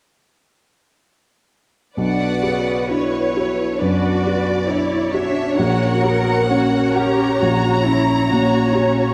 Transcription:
1.96 3.77 B1 soft
1.96 2.41 D4 soft
1.96 2.86 F#4 soft
1.96 3.77 B4 soft
1.96 2.86 D5 soft
1.96 2.87 F#5 medium
2.43 2.90 C#3 soft
2.43 3.17 F#4 soft
2.89 3.63 D4 soft
2.89 3.33 E4 soft
2.89 3.36 F#4 soft
2.89 3.81 C#5 soft
2.89 3.80 C#5 soft
3.35 3.80 E4 soft
3.35 4.08 F#4 soft
3.79 4.52 F#2 soft
3.79 4.25 D4 soft
3.79 4.23 F#4 soft
3.79 4.65 F#4 soft
3.79 4.67 B4 soft
3.79 5.13 D5 soft
4.24 4.69 F#4 soft
4.24 4.96 F#4 soft
4.67 5.41 D4 soft
4.67 5.13 E4 soft
4.67 5.12 E4 soft
4.67 6.47 C#5 soft
5.12 5.57 D4 soft
5.12 5.58 D4 soft
5.12 5.58 F#4 soft
5.12 5.58 E5 soft
5.57 7.36 A#1 soft
5.57 6.03 C#4 soft
5.57 6.47 F#4 soft
5.57 6.03 F#4 soft
5.57 6.46 A#4 soft
5.57 6.91 F#5 medium
6.02 6.48 B3 soft
6.02 6.76 F#4 soft
6.02 6.48 A#4 soft
6.48 6.94 A#3 soft
6.48 7.23 C#4 soft
6.48 6.93 F#4 soft
6.48 7.38 A#4 soft
6.48 8.29 C#5 soft
6.92 7.39 C#4 soft
6.92 7.40 G4 soft
6.92 7.68 F#5 soft
6.92 9.14 A#5 medium
7.38 9.14 A#1 soft
7.38 7.84 F#4 soft
7.38 7.85 F#4 soft
7.38 9.14 C#5 soft
7.84 8.57 C#4 soft
7.84 8.30 E4 soft
8.30 9.02 A#2 soft
8.30 9.14 F#4 soft
8.30 8.74 F#4 soft
8.30 9.14 C#5 soft
8.75 9.14 C#4 soft
8.75 9.14 F#4 soft

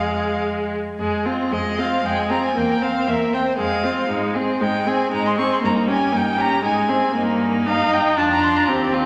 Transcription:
0.00 0.79 F2 soft
0.00 0.76 G#3 soft
0.00 0.79 G#4 soft
0.00 0.42 F5 soft
0.99 1.43 F2 soft
0.99 1.28 G#3 soft
0.99 1.27 G#4 soft
1.26 1.54 C4 soft
1.26 1.54 F4 soft
1.51 1.95 F2 soft
1.51 1.80 G#3 soft
1.51 1.80 G#4 soft
1.51 1.81 D#5 medium
1.79 2.05 C4 soft
1.79 2.04 F4 soft
1.79 2.07 F5 soft
2.04 2.48 F2 soft
2.04 2.32 G#3 soft
2.04 2.32 G#4 soft
2.04 2.21 G5 medium
2.19 2.31 G#5 soft
2.30 2.56 C4 soft
2.30 2.55 F4 soft
2.30 2.44 A#5 medium
2.46 2.59 G#5 soft
2.56 2.99 E2 soft
2.56 2.84 A#3 soft
2.56 2.83 A#4 soft
2.56 2.85 G5 soft
2.82 3.09 C4 soft
2.82 3.10 C5 soft
2.82 3.10 F5 medium
3.07 3.50 E2 soft
3.07 3.35 A#3 soft
3.07 3.35 A#4 soft
3.07 3.33 E5 soft
3.33 3.58 C4 soft
3.33 3.57 C5 soft
3.33 3.42 G5 medium
3.58 4.02 F2 soft
3.58 3.86 G#3 soft
3.58 3.85 G#4 soft
3.58 4.09 F5 medium
3.83 4.09 C4 soft
3.83 4.08 F4 soft
4.08 4.53 G#2 medium
4.08 4.37 G#3 soft
4.08 4.36 D#4 soft
4.34 4.62 C4 soft
4.34 4.62 G#4 soft
4.60 5.04 G#2 soft
4.60 4.88 G#3 soft
4.60 4.88 D#4 soft
4.60 4.90 G5 medium
4.86 5.11 C4 soft
4.86 5.09 G#4 soft
4.86 5.13 G#5 soft
5.10 5.55 G#2 soft
5.10 5.40 G#3 soft
5.10 5.37 D#4 soft
5.10 5.26 A#5 medium
5.27 5.32 C6 medium
5.36 5.62 C4 soft
5.36 5.61 G#4 soft
5.36 5.51 C#6 medium
5.53 5.58 C6 medium
5.62 6.06 G2 medium
5.62 5.89 A#3 soft
5.62 5.89 D#4 soft
5.62 5.73 A#5 medium
5.87 6.14 C#4 soft
5.87 6.14 G4 soft
5.87 6.18 G#5 medium
6.12 6.56 G2 medium
6.12 6.40 A#3 soft
6.12 6.39 D#4 soft
6.17 6.42 G5 medium
6.38 6.64 C#4 soft
6.38 6.63 G4 soft
6.38 6.65 A#5 medium
6.64 7.07 G#2 soft
6.64 6.90 G#3 soft
6.64 6.91 D#4 soft
6.64 7.15 G#5 medium
6.89 7.14 C4 soft
6.89 7.14 G#4 soft
7.15 8.14 G2 medium
7.15 7.68 A#3 soft
7.15 8.19 D#4 medium
7.67 8.19 D#4 medium
7.67 7.95 F5 medium
7.93 8.18 G5 medium
8.18 8.68 F2 soft
8.18 8.70 D4 medium
8.18 8.72 F4 soft
8.18 8.24 A5 medium
8.32 8.45 A#5 medium
8.44 8.58 C6 medium
8.57 8.69 A#5 medium
8.69 9.06 D#2 medium
8.69 9.06 C4 medium
8.69 8.95 G4 medium
8.94 9.06 F4 soft

